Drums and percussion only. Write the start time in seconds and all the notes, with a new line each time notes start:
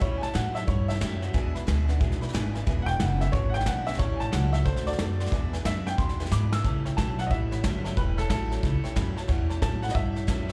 0.02 kick, snare
0.23 snare
0.35 snare, hi-hat pedal
0.56 snare
0.68 kick, snare
0.89 snare
0.95 snare
1.01 snare, hi-hat pedal
1.22 snare
1.34 kick, snare
1.56 snare
1.68 snare, hi-hat pedal
1.89 snare
2.01 kick, snare
2.12 snare
2.22 snare
2.28 snare
2.35 snare, hi-hat pedal
2.55 snare
2.67 kick, snare
2.88 snare
3.00 snare, hi-hat pedal
3.21 snare
3.33 kick, snare
3.54 snare
3.60 snare
3.66 snare, hi-hat pedal
3.87 snare
3.93 snare
3.99 kick, snare
4.21 snare
4.33 snare, hi-hat pedal
4.54 snare
4.66 kick, snare
4.76 snare
4.87 snare
4.93 snare
4.99 snare, hi-hat pedal
5.20 snare
5.26 snare
5.32 kick, snare
5.53 snare
5.65 snare, hi-hat pedal
5.87 snare
5.98 kick, snare
6.09 snare
6.20 snare
6.26 snare
6.32 snare, hi-hat pedal
6.53 snare
6.64 kick, snare
6.86 snare
6.98 kick, snare, hi-hat pedal
7.19 snare
7.30 kick, snare
7.52 snare
7.64 kick, snare, hi-hat pedal
7.85 snare
7.97 kick, snare
8.18 snare
8.30 kick, snare, hi-hat pedal
8.52 snare
8.63 kick, snare
8.85 snare
8.96 kick, snare, hi-hat pedal
9.17 snare
9.29 kick, snare
9.50 snare
9.62 kick, snare, hi-hat pedal
9.83 snare
9.89 snare
9.95 kick, snare
10.16 snare
10.28 kick, snare, hi-hat pedal
10.49 snare